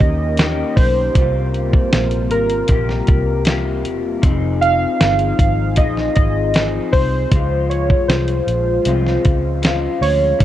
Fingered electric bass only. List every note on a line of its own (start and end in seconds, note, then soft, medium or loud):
0.01 0.62 D#2 medium
0.77 1.08 B1 loud
1.15 1.77 C2 loud
1.93 2.31 A#1 medium
2.31 2.62 G#1 medium
2.69 3.00 A#1 loud
3.09 3.85 C2 medium
3.85 4.16 E1 loud
4.23 4.85 F1 loud
5.01 5.32 G1 medium
5.39 5.77 G#1 medium
5.77 6.08 A#1 loud
6.17 6.78 G#1 medium
6.93 7.24 C2 loud
7.32 7.93 C#2 loud
8.08 8.39 C2 medium
8.47 8.78 A#1 medium
8.86 9.17 C2 loud
9.25 9.87 C#2 medium
10.01 10.32 D2 loud
10.41 10.45 D#2 loud